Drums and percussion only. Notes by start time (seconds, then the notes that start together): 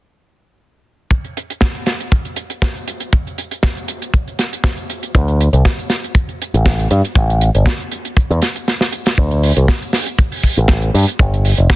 1.11 kick, closed hi-hat
1.24 closed hi-hat
1.37 closed hi-hat
1.50 closed hi-hat
1.61 kick, snare, closed hi-hat
1.75 closed hi-hat
1.86 snare, closed hi-hat
2.00 closed hi-hat
2.12 kick, closed hi-hat
2.25 closed hi-hat
2.36 closed hi-hat
2.50 closed hi-hat
2.62 kick, snare, closed hi-hat
2.75 closed hi-hat
2.88 closed hi-hat
3.00 closed hi-hat
3.13 kick, closed hi-hat
3.27 closed hi-hat
3.38 closed hi-hat
3.51 closed hi-hat
3.63 kick, snare, closed hi-hat
3.77 closed hi-hat
3.88 closed hi-hat
4.02 closed hi-hat
4.14 kick, closed hi-hat
4.28 closed hi-hat
4.39 snare, closed hi-hat
4.53 closed hi-hat
4.64 kick, snare, closed hi-hat
4.77 closed hi-hat
4.90 closed hi-hat
5.03 closed hi-hat
5.15 kick, closed hi-hat
5.28 closed hi-hat
5.41 closed hi-hat
5.53 closed hi-hat
5.65 kick, snare, closed hi-hat
5.79 closed hi-hat
5.90 snare, closed hi-hat
6.04 closed hi-hat
6.15 kick, closed hi-hat
6.29 closed hi-hat
6.42 closed hi-hat
6.54 closed hi-hat
6.66 kick, snare, closed hi-hat
6.79 closed hi-hat
6.91 closed hi-hat
7.05 closed hi-hat
7.15 kick, closed hi-hat
7.30 closed hi-hat
7.41 closed hi-hat
7.55 closed hi-hat
7.66 kick, snare, closed hi-hat
7.80 closed hi-hat
7.92 closed hi-hat
8.05 closed hi-hat
8.17 kick, closed hi-hat
8.31 closed hi-hat
8.42 snare, closed hi-hat
8.56 closed hi-hat
8.68 snare, closed hi-hat
8.81 snare, closed hi-hat
8.92 closed hi-hat
9.06 snare, closed hi-hat
9.18 kick, closed hi-hat
9.31 closed hi-hat
9.43 open hi-hat
9.56 closed hi-hat
9.68 kick, snare, closed hi-hat
9.82 closed hi-hat
9.93 snare, open hi-hat
10.06 closed hi-hat
10.18 kick, closed hi-hat
10.32 open hi-hat
10.43 kick, open hi-hat
10.57 closed hi-hat
10.68 kick, snare, closed hi-hat
10.82 closed hi-hat
10.95 open hi-hat
11.08 closed hi-hat
11.19 kick, closed hi-hat
11.34 closed hi-hat
11.45 open hi-hat
11.58 closed hi-hat
11.70 kick, snare, closed hi-hat